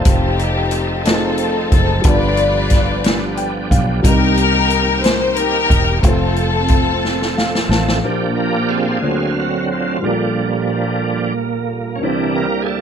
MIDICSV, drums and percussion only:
0, 0, Header, 1, 2, 480
1, 0, Start_track
1, 0, Tempo, 664452
1, 40, Time_signature, 6, 3, 24, 8
1, 9254, End_track
2, 0, Start_track
2, 0, Title_t, "Drums"
2, 37, Note_on_c, 9, 42, 96
2, 41, Note_on_c, 9, 36, 109
2, 109, Note_off_c, 9, 42, 0
2, 113, Note_off_c, 9, 36, 0
2, 284, Note_on_c, 9, 42, 49
2, 356, Note_off_c, 9, 42, 0
2, 513, Note_on_c, 9, 42, 69
2, 585, Note_off_c, 9, 42, 0
2, 761, Note_on_c, 9, 42, 74
2, 775, Note_on_c, 9, 38, 95
2, 833, Note_off_c, 9, 42, 0
2, 847, Note_off_c, 9, 38, 0
2, 994, Note_on_c, 9, 42, 51
2, 1066, Note_off_c, 9, 42, 0
2, 1241, Note_on_c, 9, 42, 61
2, 1243, Note_on_c, 9, 36, 89
2, 1313, Note_off_c, 9, 42, 0
2, 1315, Note_off_c, 9, 36, 0
2, 1472, Note_on_c, 9, 42, 100
2, 1479, Note_on_c, 9, 36, 114
2, 1544, Note_off_c, 9, 42, 0
2, 1552, Note_off_c, 9, 36, 0
2, 1713, Note_on_c, 9, 42, 47
2, 1785, Note_off_c, 9, 42, 0
2, 1950, Note_on_c, 9, 42, 69
2, 1959, Note_on_c, 9, 36, 88
2, 1967, Note_on_c, 9, 38, 33
2, 2022, Note_off_c, 9, 42, 0
2, 2032, Note_off_c, 9, 36, 0
2, 2040, Note_off_c, 9, 38, 0
2, 2197, Note_on_c, 9, 42, 75
2, 2211, Note_on_c, 9, 38, 97
2, 2270, Note_off_c, 9, 42, 0
2, 2284, Note_off_c, 9, 38, 0
2, 2436, Note_on_c, 9, 42, 49
2, 2509, Note_off_c, 9, 42, 0
2, 2681, Note_on_c, 9, 36, 86
2, 2686, Note_on_c, 9, 42, 61
2, 2753, Note_off_c, 9, 36, 0
2, 2758, Note_off_c, 9, 42, 0
2, 2919, Note_on_c, 9, 36, 107
2, 2921, Note_on_c, 9, 42, 103
2, 2991, Note_off_c, 9, 36, 0
2, 2994, Note_off_c, 9, 42, 0
2, 3160, Note_on_c, 9, 42, 52
2, 3232, Note_off_c, 9, 42, 0
2, 3396, Note_on_c, 9, 42, 68
2, 3469, Note_off_c, 9, 42, 0
2, 3640, Note_on_c, 9, 42, 75
2, 3653, Note_on_c, 9, 38, 98
2, 3712, Note_off_c, 9, 42, 0
2, 3726, Note_off_c, 9, 38, 0
2, 3875, Note_on_c, 9, 42, 54
2, 3947, Note_off_c, 9, 42, 0
2, 4119, Note_on_c, 9, 36, 87
2, 4125, Note_on_c, 9, 42, 61
2, 4192, Note_off_c, 9, 36, 0
2, 4198, Note_off_c, 9, 42, 0
2, 4358, Note_on_c, 9, 36, 112
2, 4360, Note_on_c, 9, 42, 102
2, 4430, Note_off_c, 9, 36, 0
2, 4432, Note_off_c, 9, 42, 0
2, 4597, Note_on_c, 9, 42, 46
2, 4669, Note_off_c, 9, 42, 0
2, 4828, Note_on_c, 9, 42, 72
2, 4838, Note_on_c, 9, 36, 88
2, 4900, Note_off_c, 9, 42, 0
2, 4910, Note_off_c, 9, 36, 0
2, 5092, Note_on_c, 9, 38, 50
2, 5164, Note_off_c, 9, 38, 0
2, 5216, Note_on_c, 9, 38, 51
2, 5288, Note_off_c, 9, 38, 0
2, 5332, Note_on_c, 9, 38, 69
2, 5404, Note_off_c, 9, 38, 0
2, 5455, Note_on_c, 9, 38, 66
2, 5527, Note_off_c, 9, 38, 0
2, 5572, Note_on_c, 9, 38, 89
2, 5644, Note_off_c, 9, 38, 0
2, 5695, Note_on_c, 9, 38, 87
2, 5767, Note_off_c, 9, 38, 0
2, 9254, End_track
0, 0, End_of_file